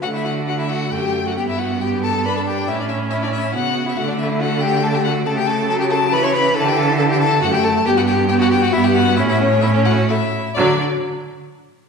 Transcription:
<<
  \new Staff \with { instrumentName = "Violin" } { \time 3/4 \key d \major \tempo 4 = 137 fis''16 e''16 fis''8 fis''16 e''16 fis''8 g''8. fis''16 | g''16 e''16 fis''8 g''8 a''8 b''16 a''16 g''8 | e''16 d''16 e''8 e''16 d''16 e''8 fis''8. e''16 | fis''16 d''16 e''8 fis''8 g''8 a''16 g''16 fis''8 |
a''16 g''16 a''8 a''16 g''16 a''8 b''16 cis'''16 b''8 | a''16 g''16 a''8 a''16 g''16 a''8 fis''16 g''16 a''8 | g''16 fis''16 g''8 g''16 fis''16 g''16 fis''16 e''16 g''16 fis''8 | e''16 e''16 cis''8 e''16 cis''16 fis''8 e''4 |
d''8 r2 r8 | }
  \new Staff \with { instrumentName = "Violin" } { \time 3/4 \key d \major fis'16 e'16 fis'8 fis'16 e'16 fis'8 g'8. fis'16 | g'16 e'16 fis'8 g'8 a'8 b'16 a'16 g'8 | e'16 d'16 e'8 e'16 d'16 e'8 fis'8. e'16 | fis'16 d'16 e'8 fis'8 g'8 a'16 g'16 fis'8 |
a'16 g'16 a'8 a'16 g'16 a'8 b'16 cis''16 b'8 | a'16 g'16 a'8 a'16 g'16 a'8 fis'16 g'16 a'8 | g'16 fis'16 g'8 g'16 fis'16 g'16 fis'16 e'16 g'16 fis'8 | e'16 e'16 cis'8 e'16 cis'16 fis'8 e'4 |
d'8 r2 r8 | }
  \new Staff \with { instrumentName = "Viola" } { \time 3/4 \key d \major a4 a2 | b2 d'4 | cis'2 b4 | a2. |
a4 fis4 e4~ | e2 a4 | b4 b4 b4 | cis'4 cis'4 a8 r8 |
fis8 r2 r8 | }
  \new Staff \with { instrumentName = "Cello" } { \clef bass \time 3/4 \key d \major d2 fis,4 | g,2. | a,2 cis4 | d2. |
cis2. | d2 fis,4 | g,2 g,4 | a,2~ a,8 r8 |
d8 r2 r8 | }
>>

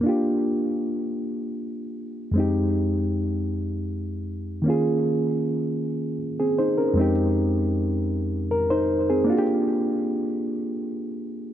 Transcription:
\new Staff \with { instrumentName = "Reed electric piano" } { \time 6/8 \key f \minor \tempo 4. = 52 << { r2. | r2. | r2 r16 <c' aes'>16 <ees' c''>16 <des' bes'>16~ | <des' bes'>16 r4. r16 bes'16 <ees' c''>8 <c' aes'>16~ |
<c' aes'>16 r2 r8. | } \\ { <bes d' f' g'>2. | <f, aes c' ees' g'>2. | <ees bes des' f' aes'>2. | <f, aes c' ees' g'>2. |
<bes d' f' ges' g'>2. | } >> }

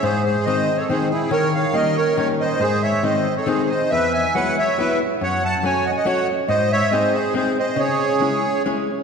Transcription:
<<
  \new Staff \with { instrumentName = "Accordion" } { \time 3/4 \key gis \phrygian \tempo 4 = 140 << { bis'8 bis'8 dis''8. cis''16 bis'8 gis'8 | cis''8 eis''8 dis''8 cis''8 cis''8 dis''8 | bis'8 e''8 dis''8. cis''16 bis'8 dis''8 | e''8 gis''8 fis''8 e''8 e''8 r8 |
fis''8 a''16. a''32 gis''8 fis''32 gis''32 fis''16 fis''8 r8 | dis''8 e''8 dis''8 bis'8 bis'8 dis''8 | cis''2 r4 | } \\ { gis'8 gis'8 bis'8. a'16 gis'8 e'8 | ais'8 cis''8 ais'8 ais'8 ais'8 bis'8 | gis'8 cis''8 bis'8. a'16 gis'8 bis'8 | b'8 e''8 b'8 cis''8 b'8 r8 |
cis''8 fis''8 cis''8 dis''16 dis''16 cis''8 r8 | bis'8 cis''8 bis'8 gis'8 gis'8 bis'8 | gis'2 r4 | } >> }
  \new Staff \with { instrumentName = "Hollow-body jazz guitar" } { \time 3/4 \key gis \phrygian gis,4 <dis gis bis dis'>8 r8 <dis gis bis dis'>8 r8 | dis4 <dis g ais cis'>8 r8 <dis g ais cis'>8 r8 | gis,4 <dis gis bis dis'>8 r8 <dis gis bis dis'>8 r8 | e,4 <fis gis b e'>8 r8 <fis gis b e'>8 r8 |
fis,4 <fis a cis' fis'>8 r8 <fis a cis' fis'>8 r8 | gis,4 <gis bis dis' gis'>8 r8 <gis bis dis' gis'>8 r8 | cis4 <gis cis' e' gis'>8 r8 <gis cis' e' gis'>8 r8 | }
>>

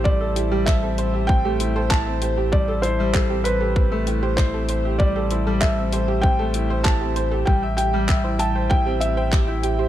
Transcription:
<<
  \new Staff \with { instrumentName = "Felt piano" } { \time 4/4 \key a \minor \tempo 4 = 97 d''4 e''4 g''4 a''8. r16 | d''8 c''4 b'4. c''4 | d''4 e''4 g''4 a''8. r16 | g''8 g''4 a''8 g''8 e''4. | }
  \new Staff \with { instrumentName = "Synth arpeggio sound" } { \time 4/4 \key a \minor c''16 e''16 g'16 g'16 c''16 a'16 c''16 e''16 g'16 g'16 c''16 a'16 c''16 e''16 g'16 g'16 | c''16 a'16 c''16 e''16 g'16 g'16 c''16 a'16 c''16 e''16 g'16 g'16 c''16 a'16 c''16 e''16 | g'16 g'16 c''16 a'16 c''16 e''16 g'16 g'16 c''16 a'16 c''16 e''16 g'16 g'16 c''16 a'16 | e''16 g''16 g'16 g'16 e''16 c''16 e''16 g''16 g'16 g'16 e''16 c''16 e''16 g''16 g'16 g'16 | }
  \new Staff \with { instrumentName = "Grand piano" } { \time 4/4 \key a \minor g16 a'16 e'16 g16 a'16 c'16 c''16 g'16 c'16 a16 e'16 c''16 r16 c'16 c''16 g'16 | g16 a'16 e'16 g16 a'16 c'16 c''16 g'16 c'16 a16 e'16 c''16 e'16 c'16 c''16 g'16 | g16 a'16 e'16 g16 a'16 c'16 c''16 g'16 c'16 a16 e'16 c''16 e'16 c'16 c''16 g'16 | g16 e''16 g'16 g16 e''16 e'16 g''16 c''16 e'16 c'16 g'16 g''16 g'16 e'16 g''16 c''16 | }
  \new Staff \with { instrumentName = "Sub bass" } { \clef bass \time 4/4 \key a \minor a,,1~ | a,,1~ | a,,1 | a,,1 | }
  \new DrumStaff \with { instrumentName = "Drums" } \drummode { \time 4/4 bd8 hh8 <hc bd>8 hh8 bd8 hh8 <hc bd>8 hh8 | bd8 hh8 <hc bd>8 hh8 bd8 hh8 <hc bd>8 hh8 | bd8 hh8 <hc bd>8 hh8 bd8 hh8 <hc bd>8 hh8 | bd8 hh8 <hc bd>8 hh8 bd8 hh8 <hc bd>8 hh8 | }
>>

